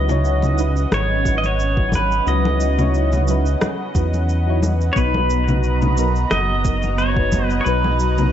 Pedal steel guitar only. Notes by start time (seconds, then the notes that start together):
Already playing: D#5
0.94 C#5
1.38 D#5
1.46 C#5
1.95 B4
2.28 D#5
4.93 C#5
4.98 B4
6.31 D#5
6.98 C#5
7.45 B4
7.61 B4 C#5